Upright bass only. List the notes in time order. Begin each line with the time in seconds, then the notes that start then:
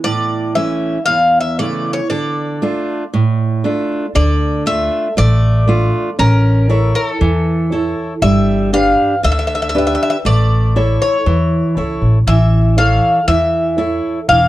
4.16 D2
5.18 A1
6.19 A1
7.21 E2
8.22 G1
9.24 D2
10.25 A1
11.26 E2
11.77 C#2
12.02 A1
12.27 A1
13.28 E2
14.29 E1